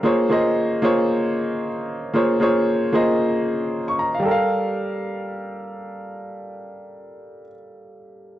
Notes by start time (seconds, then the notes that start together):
0.03 A#3 F4 G#4 C5 C#5
0.30 A#3 F4 G#4 C5 D#5
0.82 A#3 F4 G#4 C5 C#5
2.14 A#3 F4 G#4 C5 C#5
2.40 A#3 F4 G#4 C5 C#5
2.93 A#3 F4 G#4 C5 D#5
3.88 C#6
3.99 A#5
4.14 F5
4.20 G3 G4
4.25 A4 A#4
4.31 F5